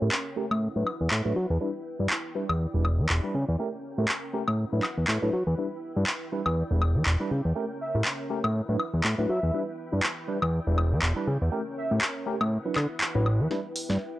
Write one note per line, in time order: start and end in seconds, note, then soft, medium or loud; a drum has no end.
0.00 0.09 A2 loud
0.00 0.07 A3 medium
0.00 0.61 C#4 medium
0.00 0.08 C#4 medium
0.00 0.08 G4 medium
0.00 0.61 A#4 medium
0.00 0.08 A#4 medium
0.00 0.59 G5 medium
0.12 clap loud
0.36 0.45 A3 medium
0.36 0.45 C#4 medium
0.36 0.45 G4 medium
0.36 0.45 A#4 loud
0.51 0.68 A2 medium
0.51 high woodblock medium
0.61 3.56 E4 medium
0.61 2.33 B4 medium
0.61 1.60 F#5 medium
0.76 0.84 A2 medium
0.76 0.86 F#3 medium
0.76 0.86 D4 medium
0.76 0.86 E4 medium
0.76 0.86 B4 medium
0.87 high woodblock medium
1.01 1.08 E2 medium
1.11 1.22 A2 medium
1.11 clap loud
1.25 1.33 A2 medium
1.25 1.35 F#3 medium
1.25 1.35 D4 medium
1.25 1.35 E4 medium
1.25 1.35 B4 loud
1.36 1.46 F#3 medium
1.50 1.58 E2 loud
1.61 1.69 G3 medium
1.61 1.69 D4 medium
1.61 1.69 E4 medium
1.61 1.69 B4 loud
1.61 4.55 G5 medium
1.99 2.08 G2 loud
1.99 2.06 G3 medium
1.99 2.06 D4 medium
1.99 2.06 E4 medium
1.99 2.06 B4 medium
2.10 clap loud
2.35 2.43 G3 medium
2.35 2.43 D4 medium
2.35 2.43 E4 medium
2.35 2.44 B4 loud
2.35 3.58 D5 medium
2.49 2.67 E2 medium
2.49 high woodblock medium
2.74 3.01 E1 medium
2.74 2.84 G3 medium
2.74 2.84 D4 medium
2.74 2.84 E4 medium
2.74 2.84 B4 medium
2.85 high woodblock medium
2.99 3.07 E2 loud
3.09 3.20 E1 medium
3.09 clap loud
3.23 3.33 G3 medium
3.23 3.33 D4 medium
3.23 3.34 E4 medium
3.23 3.34 B4 loud
3.35 3.45 C#3 medium
3.48 3.56 E2 loud
3.59 3.67 A3 medium
3.59 4.57 C#4 medium
3.59 3.67 C#4 medium
3.59 3.68 G4 medium
3.59 4.57 A#4 medium
3.59 3.68 A#4 loud
3.98 4.06 A2 loud
3.98 4.04 A3 medium
3.98 4.04 C#4 medium
3.98 4.04 G4 medium
3.98 4.04 A#4 medium
4.08 clap loud
4.33 4.41 A3 medium
4.33 4.42 C#4 medium
4.33 4.42 G4 medium
4.33 4.42 A#4 loud
4.48 4.65 A2 medium
4.48 high woodblock medium
4.57 7.52 E4 medium
4.57 6.30 B4 medium
4.57 5.56 F#5 medium
4.72 4.80 A2 medium
4.72 4.82 F#3 medium
4.72 4.82 D4 medium
4.72 4.82 E4 medium
4.72 4.83 B4 medium
4.83 clap medium
4.83 high woodblock medium
4.98 5.05 E2 medium
5.08 5.18 A2 medium
5.08 clap loud
5.22 5.30 A2 medium
5.22 5.32 F#3 medium
5.22 5.32 D4 medium
5.22 5.32 E4 medium
5.22 5.32 B4 loud
5.33 5.43 F#3 medium
5.47 5.55 E2 loud
5.58 5.66 G3 medium
5.58 5.66 D4 medium
5.58 5.66 E4 medium
5.58 5.66 B4 loud
5.58 8.52 G5 medium
5.96 6.04 G2 loud
5.96 6.03 G3 medium
5.96 6.03 D4 medium
5.96 6.03 E4 medium
5.96 6.03 B4 medium
6.07 clap loud
6.32 6.40 G3 medium
6.32 6.40 D4 medium
6.32 6.40 E4 medium
6.32 6.41 B4 loud
6.32 7.55 D5 medium
6.46 6.63 E2 medium
6.46 high woodblock medium
6.71 6.97 E1 medium
6.71 6.81 G3 medium
6.71 6.81 D4 medium
6.71 6.81 E4 medium
6.71 6.81 B4 medium
6.82 high woodblock medium
6.95 7.03 E2 loud
7.06 7.17 E1 medium
7.06 clap loud
7.20 7.30 G3 medium
7.20 7.30 D4 medium
7.20 7.30 E4 medium
7.20 7.30 B4 loud
7.31 7.41 C#3 medium
7.45 7.53 E2 loud
7.55 7.64 A3 medium
7.55 7.64 C#4 medium
7.55 8.54 C#4 medium
7.55 7.64 G4 medium
7.55 7.64 A#4 loud
7.55 8.54 A#4 medium
7.81 7.96 E5 medium
7.94 8.03 A2 loud
7.94 8.01 A3 medium
7.94 8.01 C#4 medium
7.94 8.01 G4 medium
7.94 8.01 A#4 medium
8.05 clap loud
8.30 8.38 A3 loud
8.30 8.38 C#4 medium
8.30 8.38 G4 medium
8.30 8.38 A#4 loud
8.44 8.61 A2 medium
8.44 high woodblock medium
8.55 10.27 E4 medium
8.55 10.27 B4 medium
8.55 9.54 F#5 medium
8.68 8.77 A2 medium
8.68 8.79 F#3 medium
8.68 8.79 D4 medium
8.68 8.79 E4 medium
8.68 8.79 B4 medium
8.80 high woodblock medium
8.94 9.02 E2 medium
9.04 9.15 A2 medium
9.04 clap loud
9.18 9.26 A2 medium
9.18 9.28 F#3 medium
9.18 9.28 D4 medium
9.18 9.28 E4 medium
9.18 9.29 B4 loud
9.29 9.40 F#3 medium
9.29 9.60 E5 medium
9.43 9.51 E2 loud
9.53 9.62 G3 medium
9.53 9.62 D4 medium
9.53 9.62 E4 medium
9.53 9.62 B4 loud
9.53 12.49 G5 medium
9.92 10.01 G2 loud
9.92 9.99 G3 medium
9.92 9.99 D4 medium
9.92 9.99 E4 medium
9.92 9.99 B4 medium
10.03 clap loud
10.28 10.36 G3 medium
10.28 10.36 D4 medium
10.28 11.51 E4 medium
10.28 10.37 E4 medium
10.28 10.37 B4 loud
10.28 11.51 D5 medium
10.42 10.60 E2 medium
10.42 high woodblock medium
10.66 10.93 E1 medium
10.66 10.77 G3 medium
10.66 10.77 D4 medium
10.66 10.77 E4 medium
10.66 10.77 B4 medium
10.78 high woodblock medium
10.92 11.00 E2 loud
11.02 11.13 E1 medium
11.02 clap loud
11.16 11.26 G3 medium
11.16 11.27 D4 medium
11.16 11.27 E4 medium
11.16 11.27 B4 loud
11.27 11.38 C#3 medium
11.42 11.50 E2 loud
11.51 11.60 A3 medium
11.51 11.60 C#4 medium
11.51 12.50 C#4 medium
11.51 11.60 G4 medium
11.51 11.61 A#4 loud
11.51 12.51 A#4 medium
11.77 11.93 E5 medium
11.91 11.99 A2 loud
11.91 11.97 A3 medium
11.91 11.97 C#4 medium
11.91 11.98 G4 medium
11.91 11.98 A#4 medium
12.01 clap loud
12.26 12.35 A3 loud
12.26 12.35 C#4 medium
12.26 12.35 G4 medium
12.26 12.35 A#4 loud
12.41 12.58 A2 medium
12.41 high woodblock medium
12.51 13.49 E4 medium
12.51 13.50 B4 medium
12.51 13.50 F#5 medium
12.65 12.75 F#3 medium
12.65 12.75 D4 medium
12.65 12.76 E4 medium
12.65 12.76 B4 medium
12.76 12.87 D3 medium
12.76 clap medium
12.76 high woodblock medium
13.01 clap loud
13.14 13.42 A1 loud
13.14 13.25 F#3 medium
13.14 13.25 D4 medium
13.14 13.25 E4 medium
13.14 13.25 B4 loud
13.26 high woodblock medium
13.40 13.48 E2 medium
13.50 13.59 G3 medium
13.50 13.59 D4 medium
13.50 13.59 E4 medium
13.50 14.19 E4 medium
13.50 13.59 B4 loud
13.50 14.19 B4 medium
13.50 14.19 G5 medium
13.50 snare soft
13.76 open hi-hat loud
13.89 13.98 G2 loud
13.89 13.96 G3 medium
13.89 13.96 D4 medium
13.89 13.96 E4 medium
13.89 13.96 B4 medium
13.89 snare soft